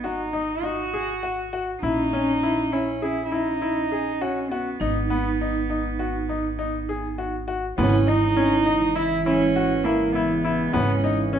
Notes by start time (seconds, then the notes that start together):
Already playing: G#1
0.04 D#4 F#4
0.33 D#4
0.63 D#4 F#4
0.93 G#4
1.23 F#4
1.53 F#4
1.82 A#1 C#4 D#4 E4
2.13 C#4
2.43 E4
2.72 C#4 E4
3.02 E4 G#4
3.25 E4
3.32 D#4 E4
3.62 E4
3.92 G#4
4.21 C#4 F#4
4.51 B3 F#4
4.80 G#1 D#4
5.10 B3
5.41 D#4
5.70 D#4
5.99 F#4
6.29 D#4
6.59 D#4
6.89 G#4
7.18 F#4
7.48 F#4
7.78 G#1 C#3 E3 G#3 B3 C#4 E4, frame drum
8.07 D#4
8.37 C#4
8.66 D#4
8.95 E4
9.26 C#4 E4, frame drum
9.56 F#4
9.84 A#3 E4, frame drum
10.13 B3 E4
10.44 E4, frame drum
10.73 G#1 B3 C#4, frame drum
11.04 D#4
11.33 C#4